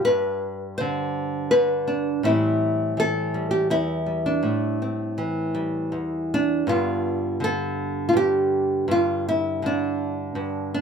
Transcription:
0, 0, Header, 1, 2, 480
1, 0, Start_track
1, 0, Tempo, 736196
1, 27, Time_signature, 3, 2, 24, 8
1, 7048, End_track
2, 0, Start_track
2, 0, Title_t, "Nylon-string guitar"
2, 0, Program_c, 0, 24
2, 0, Note_on_c, 0, 65, 69
2, 31, Note_on_c, 0, 71, 100
2, 46, Note_on_c, 0, 43, 72
2, 266, Note_off_c, 0, 65, 0
2, 507, Note_on_c, 0, 72, 92
2, 524, Note_on_c, 0, 50, 66
2, 976, Note_off_c, 0, 71, 0
2, 979, Note_off_c, 0, 50, 0
2, 981, Note_off_c, 0, 72, 0
2, 984, Note_on_c, 0, 71, 98
2, 987, Note_on_c, 0, 50, 60
2, 1223, Note_on_c, 0, 62, 81
2, 1432, Note_off_c, 0, 50, 0
2, 1438, Note_off_c, 0, 43, 0
2, 1456, Note_on_c, 0, 45, 73
2, 1459, Note_off_c, 0, 62, 0
2, 1459, Note_off_c, 0, 71, 0
2, 1462, Note_on_c, 0, 52, 47
2, 1465, Note_on_c, 0, 55, 46
2, 1468, Note_on_c, 0, 64, 89
2, 1473, Note_on_c, 0, 60, 48
2, 1934, Note_off_c, 0, 52, 0
2, 1937, Note_on_c, 0, 52, 59
2, 1939, Note_off_c, 0, 64, 0
2, 1954, Note_on_c, 0, 69, 100
2, 2177, Note_off_c, 0, 55, 0
2, 2179, Note_on_c, 0, 55, 48
2, 2285, Note_off_c, 0, 69, 0
2, 2287, Note_on_c, 0, 67, 84
2, 2410, Note_off_c, 0, 67, 0
2, 2413, Note_off_c, 0, 45, 0
2, 2414, Note_on_c, 0, 40, 64
2, 2419, Note_on_c, 0, 64, 98
2, 2647, Note_off_c, 0, 55, 0
2, 2649, Note_on_c, 0, 55, 39
2, 2774, Note_off_c, 0, 60, 0
2, 2777, Note_on_c, 0, 62, 77
2, 2866, Note_off_c, 0, 52, 0
2, 2886, Note_on_c, 0, 45, 63
2, 2892, Note_off_c, 0, 64, 0
2, 2894, Note_off_c, 0, 40, 0
2, 2900, Note_on_c, 0, 64, 82
2, 3138, Note_off_c, 0, 62, 0
2, 3142, Note_on_c, 0, 60, 46
2, 3376, Note_on_c, 0, 52, 64
2, 3608, Note_off_c, 0, 55, 0
2, 3616, Note_on_c, 0, 55, 51
2, 3858, Note_off_c, 0, 45, 0
2, 3859, Note_on_c, 0, 40, 56
2, 4131, Note_off_c, 0, 60, 0
2, 4133, Note_on_c, 0, 62, 86
2, 4319, Note_off_c, 0, 52, 0
2, 4345, Note_off_c, 0, 40, 0
2, 4348, Note_on_c, 0, 43, 76
2, 4351, Note_off_c, 0, 64, 0
2, 4354, Note_off_c, 0, 55, 0
2, 4354, Note_on_c, 0, 50, 45
2, 4356, Note_off_c, 0, 62, 0
2, 4357, Note_on_c, 0, 59, 42
2, 4362, Note_on_c, 0, 62, 49
2, 4364, Note_on_c, 0, 65, 93
2, 4818, Note_off_c, 0, 50, 0
2, 4826, Note_on_c, 0, 50, 58
2, 4838, Note_off_c, 0, 65, 0
2, 4851, Note_on_c, 0, 69, 106
2, 5270, Note_off_c, 0, 69, 0
2, 5273, Note_on_c, 0, 65, 75
2, 5301, Note_off_c, 0, 43, 0
2, 5304, Note_on_c, 0, 43, 66
2, 5315, Note_off_c, 0, 65, 0
2, 5324, Note_on_c, 0, 67, 104
2, 5772, Note_off_c, 0, 62, 0
2, 5786, Note_off_c, 0, 43, 0
2, 5788, Note_on_c, 0, 43, 71
2, 5799, Note_off_c, 0, 67, 0
2, 5811, Note_on_c, 0, 65, 94
2, 5831, Note_off_c, 0, 59, 0
2, 6042, Note_off_c, 0, 65, 0
2, 6054, Note_on_c, 0, 64, 88
2, 6267, Note_off_c, 0, 50, 0
2, 6275, Note_on_c, 0, 50, 60
2, 6299, Note_on_c, 0, 62, 80
2, 6747, Note_off_c, 0, 43, 0
2, 6749, Note_on_c, 0, 43, 55
2, 6763, Note_off_c, 0, 64, 0
2, 6997, Note_off_c, 0, 62, 0
2, 7005, Note_on_c, 0, 62, 81
2, 7048, Note_off_c, 0, 43, 0
2, 7048, Note_off_c, 0, 50, 0
2, 7048, Note_off_c, 0, 62, 0
2, 7048, End_track
0, 0, End_of_file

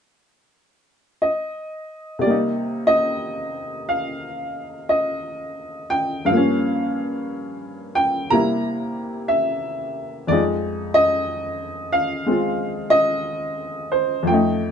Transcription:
0, 0, Header, 1, 2, 480
1, 0, Start_track
1, 0, Key_signature, -3, "minor"
1, 0, Tempo, 1010101
1, 1070, Time_signature, 4, 2, 24, 8
1, 3476, Tempo, 995025
1, 7046, End_track
2, 0, Start_track
2, 0, Title_t, "Upright piano"
2, 0, Program_c, 0, 0
2, 579, Note_on_c, 0, 75, 62
2, 1040, Note_on_c, 0, 48, 47
2, 1046, Note_off_c, 0, 75, 0
2, 1053, Note_on_c, 0, 74, 65
2, 1056, Note_on_c, 0, 55, 42
2, 1074, Note_on_c, 0, 58, 41
2, 1093, Note_on_c, 0, 63, 50
2, 1127, Note_off_c, 0, 74, 0
2, 1162, Control_c, 0, 64, 127
2, 1363, Note_on_c, 0, 75, 85
2, 1847, Note_on_c, 0, 77, 67
2, 1878, Note_off_c, 0, 75, 0
2, 2322, Note_off_c, 0, 77, 0
2, 2325, Note_on_c, 0, 75, 73
2, 2804, Note_on_c, 0, 79, 79
2, 2837, Note_off_c, 0, 75, 0
2, 2844, Note_off_c, 0, 79, 0
2, 2971, Note_on_c, 0, 43, 47
2, 2975, Note_on_c, 0, 77, 75
2, 2985, Note_off_c, 0, 48, 0
2, 2991, Note_on_c, 0, 53, 45
2, 2993, Note_off_c, 0, 55, 0
2, 3001, Note_off_c, 0, 58, 0
2, 3006, Control_c, 0, 64, 0
2, 3008, Note_on_c, 0, 58, 44
2, 3011, Note_off_c, 0, 63, 0
2, 3023, Note_on_c, 0, 61, 53
2, 3087, Control_c, 0, 64, 127
2, 3446, Note_off_c, 0, 77, 0
2, 3784, Note_on_c, 0, 79, 78
2, 3946, Note_off_c, 0, 43, 0
2, 3953, Note_on_c, 0, 82, 86
2, 3956, Note_off_c, 0, 53, 0
2, 3956, Note_off_c, 0, 58, 0
2, 3957, Note_on_c, 0, 48, 43
2, 3959, Note_off_c, 0, 79, 0
2, 3960, Note_on_c, 0, 55, 40
2, 3964, Note_on_c, 0, 58, 42
2, 3964, Note_on_c, 0, 64, 51
2, 3966, Control_c, 0, 64, 0
2, 3973, Note_off_c, 0, 61, 0
2, 4063, Control_c, 0, 64, 127
2, 4416, Note_off_c, 0, 82, 0
2, 4425, Note_on_c, 0, 76, 73
2, 4904, Note_on_c, 0, 41, 47
2, 4908, Note_on_c, 0, 74, 81
2, 4911, Note_on_c, 0, 53, 44
2, 4914, Note_off_c, 0, 48, 0
2, 4916, Note_off_c, 0, 55, 0
2, 4918, Note_off_c, 0, 58, 0
2, 4918, Note_off_c, 0, 64, 0
2, 4921, Note_on_c, 0, 56, 45
2, 4922, Control_c, 0, 64, 0
2, 4924, Note_off_c, 0, 76, 0
2, 4927, Note_on_c, 0, 63, 55
2, 4980, Note_off_c, 0, 74, 0
2, 5013, Control_c, 0, 64, 127
2, 5226, Note_on_c, 0, 75, 89
2, 5700, Note_on_c, 0, 77, 79
2, 5719, Note_off_c, 0, 75, 0
2, 5857, Note_off_c, 0, 56, 0
2, 5864, Note_on_c, 0, 56, 40
2, 5871, Note_on_c, 0, 60, 34
2, 5879, Note_on_c, 0, 65, 42
2, 6171, Note_on_c, 0, 75, 89
2, 6196, Note_off_c, 0, 77, 0
2, 6661, Note_on_c, 0, 72, 66
2, 6678, Note_off_c, 0, 75, 0
2, 6805, Note_off_c, 0, 41, 0
2, 6812, Note_on_c, 0, 41, 51
2, 6820, Note_off_c, 0, 53, 0
2, 6827, Note_on_c, 0, 53, 46
2, 6833, Note_off_c, 0, 56, 0
2, 6833, Note_on_c, 0, 79, 70
2, 6836, Note_off_c, 0, 72, 0
2, 6837, Note_off_c, 0, 60, 0
2, 6841, Note_off_c, 0, 63, 0
2, 6841, Note_off_c, 0, 65, 0
2, 6843, Control_c, 0, 64, 0
2, 6845, Note_on_c, 0, 57, 46
2, 6862, Note_on_c, 0, 63, 54
2, 6915, Control_c, 0, 64, 127
2, 7046, Note_off_c, 0, 41, 0
2, 7046, Note_off_c, 0, 53, 0
2, 7046, Note_off_c, 0, 57, 0
2, 7046, Note_off_c, 0, 63, 0
2, 7046, Note_off_c, 0, 79, 0
2, 7046, End_track
0, 0, End_of_file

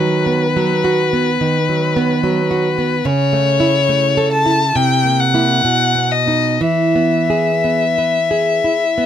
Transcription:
0, 0, Header, 1, 3, 480
1, 0, Start_track
1, 0, Key_signature, 4, "major"
1, 0, Tempo, 837989
1, 1754, Time_signature, 4, 2, 24, 8
1, 2231, Tempo, 877193
1, 3191, Tempo, 963082
1, 3671, Tempo, 1008403
1, 4836, End_track
2, 0, Start_track
2, 0, Title_t, "Violin"
2, 0, Program_c, 0, 40
2, 0, Note_on_c, 0, 71, 49
2, 1749, Note_on_c, 0, 73, 69
2, 1758, Note_off_c, 0, 71, 0
2, 2460, Note_off_c, 0, 73, 0
2, 2463, Note_on_c, 0, 81, 73
2, 2700, Note_on_c, 0, 79, 67
2, 2708, Note_off_c, 0, 81, 0
2, 2944, Note_on_c, 0, 78, 65
2, 2953, Note_off_c, 0, 79, 0
2, 3421, Note_on_c, 0, 75, 56
2, 3428, Note_off_c, 0, 78, 0
2, 3670, Note_on_c, 0, 76, 52
2, 3677, Note_off_c, 0, 75, 0
2, 4836, Note_off_c, 0, 76, 0
2, 4836, End_track
3, 0, Start_track
3, 0, Title_t, "Nylon-string guitar"
3, 0, Program_c, 1, 24
3, 0, Note_on_c, 1, 51, 45
3, 0, Note_on_c, 1, 54, 39
3, 151, Note_on_c, 1, 59, 39
3, 254, Note_off_c, 1, 54, 0
3, 323, Note_on_c, 1, 54, 41
3, 416, Note_off_c, 1, 59, 0
3, 483, Note_on_c, 1, 66, 39
3, 581, Note_off_c, 1, 54, 0
3, 648, Note_on_c, 1, 59, 43
3, 741, Note_off_c, 1, 66, 0
3, 781, Note_off_c, 1, 51, 0
3, 807, Note_on_c, 1, 51, 46
3, 902, Note_off_c, 1, 59, 0
3, 968, Note_on_c, 1, 54, 39
3, 1125, Note_on_c, 1, 59, 47
3, 1222, Note_off_c, 1, 54, 0
3, 1280, Note_on_c, 1, 54, 48
3, 1379, Note_off_c, 1, 59, 0
3, 1437, Note_on_c, 1, 66, 44
3, 1534, Note_off_c, 1, 54, 0
3, 1593, Note_on_c, 1, 59, 43
3, 1689, Note_off_c, 1, 66, 0
3, 1732, Note_off_c, 1, 51, 0
3, 1748, Note_on_c, 1, 49, 59
3, 1752, Note_off_c, 1, 59, 0
3, 1907, Note_on_c, 1, 57, 43
3, 2062, Note_on_c, 1, 64, 46
3, 2164, Note_off_c, 1, 57, 0
3, 2228, Note_on_c, 1, 57, 44
3, 2320, Note_off_c, 1, 64, 0
3, 2383, Note_on_c, 1, 69, 45
3, 2479, Note_off_c, 1, 57, 0
3, 2539, Note_on_c, 1, 64, 47
3, 2637, Note_off_c, 1, 69, 0
3, 2678, Note_off_c, 1, 49, 0
3, 2700, Note_off_c, 1, 64, 0
3, 2702, Note_on_c, 1, 48, 59
3, 2860, Note_on_c, 1, 58, 37
3, 3015, Note_off_c, 1, 58, 0
3, 3021, Note_on_c, 1, 58, 38
3, 3025, Note_on_c, 1, 64, 42
3, 3172, Note_off_c, 1, 58, 0
3, 3173, Note_off_c, 1, 64, 0
3, 3176, Note_off_c, 1, 48, 0
3, 3188, Note_on_c, 1, 47, 51
3, 3342, Note_on_c, 1, 59, 35
3, 3493, Note_off_c, 1, 59, 0
3, 3499, Note_on_c, 1, 59, 33
3, 3503, Note_on_c, 1, 63, 39
3, 3651, Note_off_c, 1, 59, 0
3, 3653, Note_off_c, 1, 63, 0
3, 3655, Note_off_c, 1, 47, 0
3, 3669, Note_on_c, 1, 52, 43
3, 3833, Note_on_c, 1, 59, 36
3, 3998, Note_on_c, 1, 68, 35
3, 4094, Note_off_c, 1, 59, 0
3, 4162, Note_on_c, 1, 59, 32
3, 4255, Note_off_c, 1, 68, 0
3, 4323, Note_on_c, 1, 71, 33
3, 4415, Note_off_c, 1, 59, 0
3, 4478, Note_on_c, 1, 68, 36
3, 4573, Note_off_c, 1, 71, 0
3, 4614, Note_off_c, 1, 52, 0
3, 4638, Note_on_c, 1, 64, 32
3, 4729, Note_off_c, 1, 68, 0
3, 4797, Note_on_c, 1, 59, 29
3, 4836, Note_off_c, 1, 59, 0
3, 4836, Note_off_c, 1, 64, 0
3, 4836, End_track
0, 0, End_of_file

